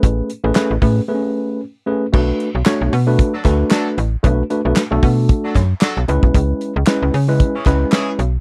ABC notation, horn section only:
X:1
M:4/4
L:1/16
Q:"Swing 16ths" 1/4=114
K:Bdor
V:1 name="Horn section"
z16 | z8 z [F,DA] z2 [F,DA]2 z2 | z8 z [F,DA] z2 [F,DA]2 z2 | z8 z [E,CG] z2 [E,CG]2 z2 |]